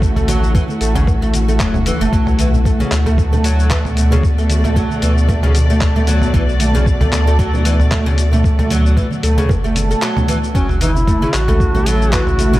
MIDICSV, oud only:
0, 0, Header, 1, 2, 480
1, 0, Start_track
1, 0, Tempo, 526316
1, 21, Time_signature, 4, 2, 24, 8
1, 11489, End_track
2, 0, Start_track
2, 0, Title_t, "Oud"
2, 0, Program_c, 0, 24
2, 0, Note_on_c, 0, 57, 69
2, 140, Note_off_c, 0, 57, 0
2, 152, Note_on_c, 0, 57, 70
2, 255, Note_off_c, 0, 57, 0
2, 259, Note_on_c, 0, 54, 96
2, 489, Note_off_c, 0, 54, 0
2, 499, Note_on_c, 0, 52, 85
2, 576, Note_off_c, 0, 52, 0
2, 740, Note_on_c, 0, 57, 65
2, 866, Note_off_c, 0, 57, 0
2, 871, Note_on_c, 0, 49, 94
2, 974, Note_off_c, 0, 49, 0
2, 1114, Note_on_c, 0, 57, 71
2, 1210, Note_off_c, 0, 57, 0
2, 1353, Note_on_c, 0, 57, 68
2, 1450, Note_off_c, 0, 57, 0
2, 1460, Note_on_c, 0, 54, 77
2, 1580, Note_off_c, 0, 54, 0
2, 1702, Note_on_c, 0, 52, 98
2, 1827, Note_off_c, 0, 52, 0
2, 1834, Note_on_c, 0, 57, 94
2, 1936, Note_off_c, 0, 57, 0
2, 1942, Note_on_c, 0, 54, 87
2, 2171, Note_off_c, 0, 54, 0
2, 2182, Note_on_c, 0, 52, 92
2, 2257, Note_off_c, 0, 52, 0
2, 2424, Note_on_c, 0, 57, 67
2, 2548, Note_off_c, 0, 57, 0
2, 2555, Note_on_c, 0, 49, 95
2, 2656, Note_off_c, 0, 49, 0
2, 2795, Note_on_c, 0, 57, 70
2, 3021, Note_off_c, 0, 57, 0
2, 3034, Note_on_c, 0, 57, 68
2, 3136, Note_off_c, 0, 57, 0
2, 3142, Note_on_c, 0, 54, 97
2, 3370, Note_off_c, 0, 54, 0
2, 3382, Note_on_c, 0, 52, 93
2, 3457, Note_off_c, 0, 52, 0
2, 3622, Note_on_c, 0, 57, 66
2, 3748, Note_off_c, 0, 57, 0
2, 3757, Note_on_c, 0, 49, 96
2, 3857, Note_off_c, 0, 49, 0
2, 3998, Note_on_c, 0, 57, 69
2, 4222, Note_off_c, 0, 57, 0
2, 4237, Note_on_c, 0, 57, 69
2, 4337, Note_off_c, 0, 57, 0
2, 4344, Note_on_c, 0, 54, 87
2, 4572, Note_off_c, 0, 54, 0
2, 4583, Note_on_c, 0, 52, 92
2, 4658, Note_off_c, 0, 52, 0
2, 4823, Note_on_c, 0, 57, 78
2, 4948, Note_off_c, 0, 57, 0
2, 4956, Note_on_c, 0, 49, 93
2, 5057, Note_off_c, 0, 49, 0
2, 5198, Note_on_c, 0, 57, 72
2, 5422, Note_off_c, 0, 57, 0
2, 5436, Note_on_c, 0, 57, 71
2, 5537, Note_off_c, 0, 57, 0
2, 5541, Note_on_c, 0, 54, 91
2, 5770, Note_off_c, 0, 54, 0
2, 5781, Note_on_c, 0, 52, 92
2, 5857, Note_off_c, 0, 52, 0
2, 6021, Note_on_c, 0, 57, 76
2, 6147, Note_off_c, 0, 57, 0
2, 6153, Note_on_c, 0, 49, 99
2, 6255, Note_off_c, 0, 49, 0
2, 6393, Note_on_c, 0, 57, 69
2, 6620, Note_off_c, 0, 57, 0
2, 6634, Note_on_c, 0, 57, 74
2, 6736, Note_off_c, 0, 57, 0
2, 6740, Note_on_c, 0, 54, 94
2, 6970, Note_off_c, 0, 54, 0
2, 6980, Note_on_c, 0, 52, 101
2, 7056, Note_off_c, 0, 52, 0
2, 7221, Note_on_c, 0, 57, 74
2, 7347, Note_off_c, 0, 57, 0
2, 7353, Note_on_c, 0, 49, 95
2, 7455, Note_off_c, 0, 49, 0
2, 7595, Note_on_c, 0, 57, 74
2, 7821, Note_off_c, 0, 57, 0
2, 7835, Note_on_c, 0, 57, 71
2, 7936, Note_off_c, 0, 57, 0
2, 7944, Note_on_c, 0, 54, 100
2, 8172, Note_off_c, 0, 54, 0
2, 8183, Note_on_c, 0, 52, 86
2, 8258, Note_off_c, 0, 52, 0
2, 8420, Note_on_c, 0, 57, 69
2, 8547, Note_off_c, 0, 57, 0
2, 8553, Note_on_c, 0, 49, 92
2, 8655, Note_off_c, 0, 49, 0
2, 8794, Note_on_c, 0, 57, 69
2, 9020, Note_off_c, 0, 57, 0
2, 9036, Note_on_c, 0, 57, 67
2, 9136, Note_off_c, 0, 57, 0
2, 9142, Note_on_c, 0, 54, 93
2, 9371, Note_off_c, 0, 54, 0
2, 9381, Note_on_c, 0, 52, 96
2, 9457, Note_off_c, 0, 52, 0
2, 9622, Note_on_c, 0, 54, 91
2, 9851, Note_off_c, 0, 54, 0
2, 9861, Note_on_c, 0, 52, 100
2, 9937, Note_off_c, 0, 52, 0
2, 10101, Note_on_c, 0, 57, 71
2, 10227, Note_off_c, 0, 57, 0
2, 10234, Note_on_c, 0, 49, 90
2, 10336, Note_off_c, 0, 49, 0
2, 10474, Note_on_c, 0, 57, 72
2, 10701, Note_off_c, 0, 57, 0
2, 10714, Note_on_c, 0, 57, 68
2, 10815, Note_off_c, 0, 57, 0
2, 10821, Note_on_c, 0, 54, 103
2, 11050, Note_off_c, 0, 54, 0
2, 11060, Note_on_c, 0, 52, 98
2, 11136, Note_off_c, 0, 52, 0
2, 11301, Note_on_c, 0, 57, 73
2, 11427, Note_off_c, 0, 57, 0
2, 11432, Note_on_c, 0, 49, 96
2, 11489, Note_off_c, 0, 49, 0
2, 11489, End_track
0, 0, End_of_file